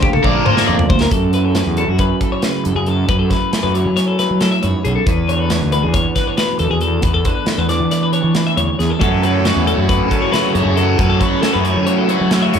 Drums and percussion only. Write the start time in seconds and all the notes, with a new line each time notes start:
0.03 kick
0.13 mid tom
0.24 kick
0.46 mid tom
0.57 snare
0.79 floor tom
0.90 kick
1.01 snare
1.11 kick, closed hi-hat
1.33 closed hi-hat
1.55 snare, closed hi-hat
1.77 closed hi-hat
1.99 kick, closed hi-hat
2.21 kick, closed hi-hat
2.42 snare, closed hi-hat
2.65 closed hi-hat
2.86 closed hi-hat
3.09 kick, closed hi-hat
3.31 kick, snare, closed hi-hat
3.53 snare, closed hi-hat
3.75 closed hi-hat
3.97 snare, closed hi-hat
4.19 snare, closed hi-hat
4.41 snare, closed hi-hat
4.63 closed hi-hat
4.85 closed hi-hat
5.07 kick, closed hi-hat
5.29 closed hi-hat
5.50 snare, closed hi-hat
5.72 closed hi-hat
5.94 kick, closed hi-hat
6.16 kick, snare, closed hi-hat
6.38 snare, closed hi-hat
6.59 closed hi-hat
6.81 closed hi-hat
7.02 kick, closed hi-hat
7.25 kick, closed hi-hat
7.46 snare, closed hi-hat
7.69 snare, closed hi-hat
7.91 snare, closed hi-hat
8.13 closed hi-hat
8.35 snare, closed hi-hat
8.57 closed hi-hat
8.80 snare, closed hi-hat
9.01 kick, closed hi-hat
9.23 closed hi-hat
9.45 snare, closed hi-hat
9.67 closed hi-hat
9.89 kick, closed hi-hat
10.11 kick, closed hi-hat
10.34 snare, closed hi-hat
10.55 closed hi-hat
10.77 closed hi-hat
10.99 kick, closed hi-hat
11.21 kick, closed hi-hat
11.43 snare, closed hi-hat
11.65 closed hi-hat
11.87 closed hi-hat
12.09 closed hi-hat
12.31 snare, closed hi-hat
12.54 closed hi-hat